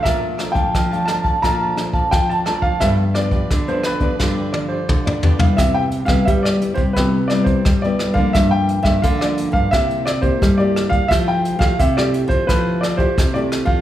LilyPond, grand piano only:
\new Staff \with { instrumentName = "Grand piano" } { \time 4/4 \key c \major \tempo 4 = 87 e''8. g''8. a''8 bes''4 g''16 a''8 f''16 | e''8 d''8. c''16 b'4 d''16 c''8 d''8 f''16 | e''16 g''8 f''16 e''16 d''8 c''16 b'8 d''16 c''8 d''8 f''16 | e''16 g''8 e''16 f''16 d''8 f''16 e''8 d''16 c''8 d''8 f''16 |
e''16 g''8 f''16 e''16 d''8 c''16 b'8 d''16 c''8 d''8 f''16 | }